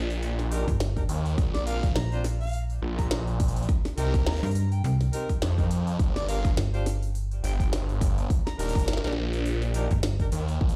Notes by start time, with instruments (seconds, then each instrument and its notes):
Already playing: detuned saw bass A#1
0.10 open hi-hat
0.23 open hi-hat
0.39 snare, open hi-hat
0.51 horn section D4 D#4 G4 A#4, open hi-hat
0.68 fm bass G1, kick, open hi-hat
0.80 snare, open hi-hat
0.97 horn section D4 D#4 G4 A#4, kick, open hi-hat
1.09 detuned saw bass D#2, open hi-hat
1.26 open hi-hat
1.38 detuned saw bass A#1, kick, open hi-hat
1.54 harmonica D5, snare, open hi-hat
1.66 horn section C4 D4 F4 A#4, harmonica F5, open hi-hat
1.83 kick, open hi-hat
1.95 fm bass A#1, harmonica A#5, snare, open hi-hat
2.12 horn section C4 D4 F4 C5, open hi-hat
2.24 snare, open hi-hat
2.41 harmonica F5, open hi-hat
2.43 open hi-hat
2.47 open hi-hat
2.49 open hi-hat
2.51 open hi-hat
2.53 open hi-hat
2.70 open hi-hat
2.82 detuned saw bass A#1
2.98 harmonica A#5, kick, open hi-hat
3.11 harmonica A#5, snare, open hi-hat
3.27 open hi-hat
3.40 kick, open hi-hat
3.48 open hi-hat
3.56 open hi-hat
3.63 open hi-hat
3.69 kick, open hi-hat
3.85 snare, open hi-hat
3.97 detuned saw bass C2, horn section C4 D#4 G4 A#4, open hi-hat
4.14 kick, open hi-hat
4.26 detuned saw bass D#2, harmonica A#5, snare, open hi-hat
4.32 open hi-hat
4.36 open hi-hat
4.43 fm bass G2, horn section C4 D#4 G4 A#4, open hi-hat
4.46 open hi-hat
4.51 open hi-hat
4.55 open hi-hat
4.72 harmonica G5, open hi-hat
4.84 fm bass C2, harmonica G5, open hi-hat
5.01 snare, open hi-hat
5.13 horn section C4 D#4 G4 A#4, open hi-hat
5.29 kick, open hi-hat
5.42 detuned saw bass F2, snare, open hi-hat
5.58 horn section C4 D#4 G4 A#4, kick, open hi-hat
5.71 open hi-hat
5.87 open hi-hat
5.99 detuned saw bass G1, kick, open hi-hat
6.16 harmonica D5, snare, open hi-hat
6.28 horn section D4 F4 G4 A#4, harmonica F5, open hi-hat
6.45 kick, open hi-hat
6.57 fm bass G1, snare, open hi-hat
6.73 horn section D4 F4 G4 C5, open hi-hat
6.86 snare, open hi-hat
7.03 open hi-hat
7.15 open hi-hat
7.31 open hi-hat
7.43 detuned saw bass G1, harmonica G5, open hi-hat
7.60 harmonica G5, kick, open hi-hat
7.73 snare, open hi-hat
7.89 open hi-hat
8.01 kick, open hi-hat
8.18 open hi-hat
8.30 kick, open hi-hat
8.46 harmonica A#5, snare, open hi-hat
8.59 detuned saw bass D#1, horn section D4 D#4 G4 A#4, harmonica A#5, open hi-hat
8.69 open hi-hat
8.75 harmonica A#5, kick, open hi-hat
8.78 open hi-hat
8.88 detuned saw bass G1, snare, open hi-hat
8.93 snare
8.97 snare
9.04 detuned saw bass A#1, horn section D4 D#4 G4 A#4, snare, open hi-hat
9.07 snare
9.13 snare
9.33 open hi-hat
9.46 open hi-hat
9.62 snare, open hi-hat
9.74 horn section D4 D#4 G4 A#4, open hi-hat
9.91 fm bass G1, kick, open hi-hat
10.03 snare, open hi-hat
10.20 horn section D4 D#4 G4 A#4, kick, open hi-hat
10.32 detuned saw bass D#2, open hi-hat
10.48 open hi-hat
10.61 detuned saw bass A#1, kick
10.69 open hi-hat